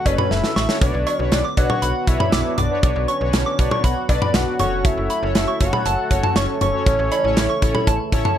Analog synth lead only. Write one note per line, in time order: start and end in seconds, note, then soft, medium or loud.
0.06 0.30 C#5 loud
0.31 0.78 E5 loud
0.81 1.16 D5 loud
1.16 1.28 C#5 loud
1.32 1.43 D5 loud
1.57 2.09 F#5 loud
2.07 2.57 E5 loud
2.58 3.10 D5 loud
3.08 3.60 C#5 loud
3.59 3.85 D5 medium
3.84 4.09 F#5 loud
4.09 4.36 D5 loud
4.34 4.86 F#5 loud
4.85 5.35 E5 loud
5.35 5.59 E5 loud
5.61 6.38 F#5 loud
6.36 6.61 C#5 medium
6.61 8.34 C#5 medium